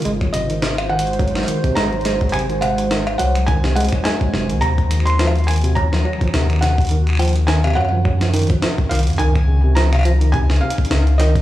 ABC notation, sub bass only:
X:1
M:4/4
L:1/16
Q:"Swing 16ths" 1/4=105
K:Ebdor
V:1 name="Sub bass" clef=bass
A,,,8- A,,,2 z2 A,,,4- | A,,,6 C,,4- C,, z3 G,,, C,, | E,,8- E,,2 z2 E,,4- | E,,6 G,,4- G,, z3 C,, G,, |
D,,8- D,,2 z2 D,,4 |]